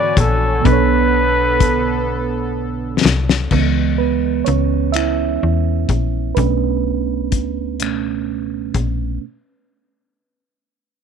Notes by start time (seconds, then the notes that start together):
Already playing: G#2 D3 E3 B3 D4 F#4 C#5 D5 G#5
0.17 A#1 A4, kick, closed hi-hat
0.62 B1 B2 B3 A4 B4, kick, closed hi-hat
0.67 D4 A4
0.72 C#5
1.60 kick, closed hi-hat
3.05 C2, snare
3.29 snare
3.51 C#2 E3 G#3 B3, kick, crash
3.98 B3 B4
4.45 C#2 C#4 C#5, closed hi-hat
4.92 E4 E5, closed hi-hat
4.96 finger snap
5.43 E2
5.89 A#1, kick, closed hi-hat
6.35 B1 A3 B3 C#4 D4 B4, kick, closed hi-hat
7.32 C#2, kick, closed hi-hat
7.80 B2 A3 C#4, finger snap, closed hi-hat
8.74 A#1, kick, closed hi-hat